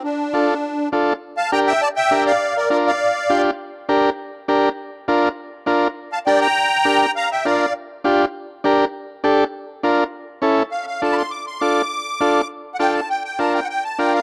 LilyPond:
<<
  \new Staff \with { instrumentName = "Accordion" } { \time 4/4 \key d \minor \tempo 4 = 202 d'2. r4 | r8 <f'' a''>8 <g'' bes''>8 <e'' g''>8 <d'' a''>8 <e'' g''>4 <d'' f''>8~ | <d'' f''>8 <bes' d''>8 <bes' d''>8 <d'' f''>2 r8 | r1 |
r1 | r8 <f'' a''>8 <d'' g''>8 <g'' bes''>2~ <g'' bes''>8 | <f'' bes''>8 <e'' g''>8 <d'' f''>4 r2 | r1 |
r1 | f''8 <e'' f''>8 a''8 <b'' c'''>8 d'''8 c'''8 d'''4~ | d'''2 r4 <fis'' g''>8 a''8 | g''8 g''8 a''8 g''8 <fis'' g''>8 a''8 g''8 f''8 | }
  \new Staff \with { instrumentName = "Transistor combo organ" } { \time 4/4 \key d \minor r4 <d' f' a'>8 r4. <d' f' a'>8 r8 | r4 <d' g' bes'>8 r4. <d' g' bes'>8 r8 | r4 <d' f' bes'>8 r4. <d' f' g'>8 r8 | r4 <d' g' bes'>8 r4. <d' g' bes'>8 r8 |
r4 <d' f' bes'>8 r4. <d' f' bes'>8 r8 | r4 <d' g' bes'>8 r4. <d' g' bes'>8 r8 | r4 <d' f' bes'>8 r4. <d' f' g'>8 r8 | r4 <d' g' bes'>8 r4. <d' g' a'>8 r8 |
r4 <d' f' bes'>8 r4. <cis' e' a'>8 r8 | r4 <d' f' a'>8 r4. <d' f' a'>8 r8 | r4 <d' f' a'>8 r4. <d' f' a'>8 r8 | r4 <d' f' bes'>8 r4. <d' f' bes'>8 r8 | }
>>